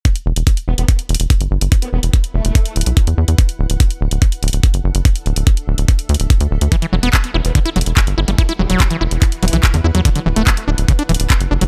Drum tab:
HH |x-x---x-x-x---x-x-x-xxx-x-x---x-|x-x---x-x-x---x-x-x-xxx-x-x---x-|x-x---x-x-x---x-x-x-xxx-x-x---x-|x-x-x-x-x-x---x-x-x-xxx-x-x---x-|
CP |--------------------------------|--------------------------------|--------------------------------|--------------------------------|
BD |o-------o-------o-------o-------|o-------o-------o-------o-------|o-------o-------o-------o-------|o-------o-------o-------o-------|

HH |x-x---x-x-x---x-x-x-xxx-x-x---x-|x-x---x-x-x---x-x-x-xxx-x-x---x-|x-x---x-x-x---x-x-x-xxx-x-x---x-|
CP |--------x---------------x-------|--------x-------x-------x-------|--------x---------------x-------|
BD |o-------o-------o-------o-------|o-------o-------o-------o-------|o-------o-------o-------o-------|